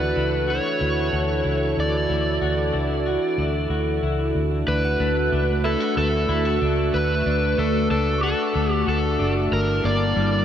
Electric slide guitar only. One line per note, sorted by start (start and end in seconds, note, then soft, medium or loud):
0.00 0.51 B4 medium
0.50 1.79 C#5 medium
1.80 3.68 D5 medium
4.68 5.65 B4 medium
5.65 5.97 A4 medium
5.98 6.97 A4 loud
6.94 7.60 B4 medium
7.59 7.90 A4 medium
7.91 8.22 A4 medium
8.23 8.73 A4 medium
8.73 8.88 G4 medium
8.89 9.33 A4 medium
9.53 9.85 A#4 medium
9.85 10.45 D5 loud